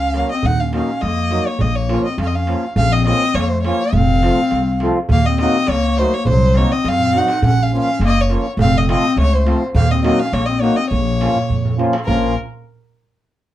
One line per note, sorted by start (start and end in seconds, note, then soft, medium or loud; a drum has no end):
0.00 0.21 C#2 medium
0.00 0.31 C#4 medium
0.00 0.31 F5 loud
0.14 0.31 F#3 medium
0.14 0.32 A#3 medium
0.14 0.32 C#4 medium
0.14 0.32 F#4 medium
0.14 darbuka tek medium
0.32 0.49 C4 medium
0.32 0.47 D#5 medium
0.43 0.79 D#2 loud
0.43 0.62 F#5 loud
0.43 darbuka dum medium
0.47 0.64 D#4 medium
0.60 0.74 C#4 medium
0.60 0.74 F5 medium
0.73 0.90 F#3 medium
0.73 0.90 A#3 medium
0.73 1.05 C#4 medium
0.73 0.90 D#4 medium
0.73 0.91 F#4 medium
0.73 1.03 F5 medium
0.73 darbuka tek medium
1.01 1.38 F2 loud
1.01 1.48 A#3 medium
1.01 1.48 D#5 loud
1.01 darbuka tek medium
1.30 1.48 F#3 medium
1.30 1.48 A#3 medium
1.30 1.49 D#4 medium
1.30 1.48 F#4 medium
1.30 darbuka tek medium
1.47 1.61 A#3 medium
1.47 1.62 C#5 medium
1.59 1.96 A#1 loud
1.59 1.77 A#3 medium
1.59 1.77 D#5 loud
1.59 darbuka dum medium
1.75 2.05 A#3 medium
1.75 2.05 C#5 medium
1.75 darbuka tek soft
1.88 2.06 F3 medium
1.88 2.06 A#3 medium
1.88 2.07 C#4 medium
1.88 2.07 F4 medium
1.88 darbuka tek medium
2.04 2.18 C4 medium
2.04 2.18 D#5 medium
2.04 darbuka tek soft
2.18 2.53 F2 loud
2.18 2.27 C#4 medium
2.18 2.28 F5 medium
2.18 darbuka tek medium
2.26 2.36 C4 medium
2.26 2.37 D#5 medium
2.34 2.64 C#4 medium
2.34 2.64 F5 medium
2.34 darbuka tek soft
2.47 2.65 F3 medium
2.47 2.65 A#3 medium
2.47 2.65 C#4 medium
2.47 2.65 F4 medium
2.47 darbuka tek medium
2.76 3.11 A#1 loud
2.76 2.94 C#4 medium
2.76 2.94 F5 loud
2.76 darbuka dum loud
2.92 3.06 C4 medium
2.92 3.06 D#5 loud
3.05 3.23 F3 medium
3.05 3.23 A#3 medium
3.05 3.37 C4 medium
3.05 3.23 C#4 medium
3.05 3.24 F4 medium
3.05 3.36 D#5 loud
3.05 darbuka tek medium
3.21 darbuka tek soft
3.34 3.70 F2 loud
3.34 3.54 A#3 medium
3.34 3.51 C#5 loud
3.34 darbuka tek medium
3.49 3.66 A3 medium
3.49 3.63 C5 medium
3.49 darbuka tek soft
3.63 3.82 F3 medium
3.63 3.82 A#3 medium
3.63 3.99 A#3 medium
3.63 3.82 C#4 medium
3.63 3.82 F4 medium
3.63 3.95 C#5 medium
3.63 darbuka tek medium
3.79 darbuka tek soft
3.93 4.28 F1 loud
3.93 4.81 F5 loud
3.93 darbuka dum medium
3.97 4.83 C4 medium
4.22 4.39 F3 medium
4.22 4.40 A3 medium
4.22 4.40 C4 medium
4.22 4.40 F4 medium
4.22 darbuka tek medium
4.37 darbuka tek soft
4.51 4.87 C2 medium
4.51 darbuka tek medium
4.66 darbuka tek soft
4.80 4.98 F3 medium
4.80 4.98 A3 medium
4.80 4.98 C4 medium
4.80 4.99 F4 loud
4.80 darbuka tek medium
4.96 darbuka tek soft
5.09 5.44 D#2 loud
5.09 5.29 A#3 medium
5.09 5.27 F5 loud
5.09 darbuka dum medium
5.26 5.40 C4 medium
5.26 5.40 D#5 loud
5.38 5.57 F#3 medium
5.38 5.57 A#3 medium
5.38 5.73 C4 medium
5.38 5.57 D#4 medium
5.38 5.57 F#4 medium
5.38 5.71 D#5 loud
5.38 darbuka tek medium
5.53 darbuka tek soft
5.67 6.03 C#2 medium
5.67 6.00 C#5 loud
5.67 darbuka tek medium
5.72 6.01 A#3 medium
5.81 darbuka tek soft
5.97 6.15 F#3 medium
5.97 6.16 A3 medium
5.97 6.15 A#3 medium
5.97 6.15 D#4 medium
5.97 6.16 F#4 medium
5.97 6.15 C5 loud
5.97 darbuka tek medium
6.12 6.27 A#3 medium
6.12 6.27 C#5 loud
6.12 darbuka tek soft
6.25 6.61 C2 loud
6.25 6.58 C5 loud
6.25 darbuka dum medium
6.31 6.59 F#3 medium
6.41 darbuka tek soft
6.54 6.72 F#3 medium
6.54 6.75 A#3 medium
6.54 6.73 C4 medium
6.54 6.73 D#4 medium
6.54 6.73 F#4 medium
6.54 6.74 C#5 loud
6.54 darbuka tek medium
6.72 6.87 C4 medium
6.72 6.90 D#5 loud
6.84 7.19 F#2 loud
6.84 7.19 C4 medium
6.84 darbuka tek medium
6.89 7.19 F5 loud
7.00 darbuka dum soft
7.13 7.30 F#3 medium
7.13 7.31 C4 medium
7.13 7.31 D#4 medium
7.13 7.31 F#4 medium
7.13 darbuka tek medium
7.17 7.44 D#4 medium
7.17 7.44 F#5 loud
7.28 darbuka tek medium
7.42 7.77 A#1 loud
7.42 7.61 C#4 loud
7.42 7.64 F#5 loud
7.42 darbuka dum loud
7.61 7.73 C#4 medium
7.61 7.74 F5 medium
7.72 7.88 F3 medium
7.72 7.89 A#3 medium
7.72 7.89 C#4 medium
7.72 8.00 C#4 medium
7.72 7.89 F4 medium
7.78 8.02 F5 loud
7.87 darbuka tek soft
8.00 8.35 F#1 loud
8.00 darbuka tek medium
8.04 8.19 A#3 loud
8.04 8.22 D#5 loud
8.17 8.47 A#3 medium
8.17 darbuka tek soft
8.21 8.47 C#5 medium
8.29 8.46 F3 medium
8.29 8.46 A#3 medium
8.29 8.47 C#4 medium
8.29 8.47 F4 medium
8.29 darbuka tek medium
8.46 darbuka tek soft
8.57 8.92 F1 loud
8.57 darbuka dum loud
8.61 8.76 C4 medium
8.61 8.79 F5 loud
8.76 8.89 C4 medium
8.76 8.90 D#5 loud
8.88 9.05 F3 medium
8.88 9.05 A3 medium
8.88 9.05 C4 medium
8.88 9.16 C4 medium
8.88 9.05 F4 medium
8.88 9.17 D#5 loud
8.88 darbuka tek medium
9.04 darbuka tek soft
9.17 9.51 C#2 loud
9.17 9.35 A3 medium
9.17 darbuka tek medium
9.21 9.36 C#5 loud
9.33 9.63 A3 medium
9.33 9.62 C5 medium
9.33 darbuka tek soft
9.45 9.62 F3 medium
9.45 9.62 A3 medium
9.45 9.63 C4 medium
9.45 9.63 F4 medium
9.45 darbuka tek medium
9.62 darbuka tek soft
9.74 10.09 D#2 loud
9.74 9.92 A#3 medium
9.74 9.93 F5 loud
9.74 darbuka dum loud
9.91 10.04 C4 medium
9.91 10.04 D#5 medium
10.03 10.20 F#3 medium
10.03 10.21 A#3 medium
10.03 10.21 C4 medium
10.03 10.21 D#4 medium
10.03 10.21 F#4 medium
10.03 10.21 D#5 medium
10.03 darbuka tek medium
10.19 10.35 C#4 medium
10.19 10.35 F5 loud
10.19 darbuka tek soft
10.33 10.68 A#1 loud
10.33 10.50 A#3 medium
10.33 10.47 C#5 loud
10.33 darbuka tek medium
10.46 10.63 C4 medium
10.46 10.63 D#5 medium
10.46 darbuka tek soft
10.61 10.78 F#3 medium
10.61 10.78 A#3 medium
10.61 10.79 A#3 medium
10.61 10.79 D#4 medium
10.61 10.79 F#4 medium
10.61 10.78 C#5 medium
10.61 darbuka tek medium
10.76 10.90 C4 medium
10.76 10.90 D#5 loud
10.76 darbuka tek soft
10.90 11.26 A#1 loud
10.90 11.74 A#3 medium
10.90 11.74 C#5 loud
10.90 darbuka dum medium
11.07 darbuka tek soft
11.20 11.37 F3 medium
11.20 11.37 A#3 medium
11.20 11.37 C#4 medium
11.20 11.38 F4 medium
11.20 darbuka tek medium
11.36 darbuka dum soft
11.49 11.85 F2 medium
11.49 darbuka dum medium
11.65 darbuka dum medium
11.78 11.95 F3 medium
11.78 11.95 A#3 medium
11.78 11.95 C#4 medium
11.78 11.95 F4 loud
11.78 darbuka tek medium
11.93 darbuka tek medium
12.05 12.35 A#1 loud
12.05 12.35 F3 medium
12.05 12.35 A#3 medium
12.05 12.35 C#4 medium
12.05 12.34 F4 medium
12.05 12.35 F4 medium
12.05 12.33 A#4 medium
12.05 darbuka dum medium